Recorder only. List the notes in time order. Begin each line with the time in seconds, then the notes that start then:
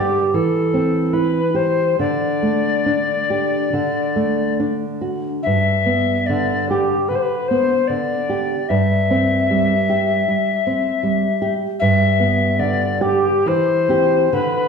Already playing: G4
0.34 A4
1.13 B4
1.56 C5
1.99 D5
5.42 E5
6.26 D5
6.69 G4
7.08 B4
7.15 C5
7.22 B4
7.48 C5
7.87 D5
8.69 E5
11.79 E5
12.59 D5
13.01 G4
13.47 C5
14.33 B4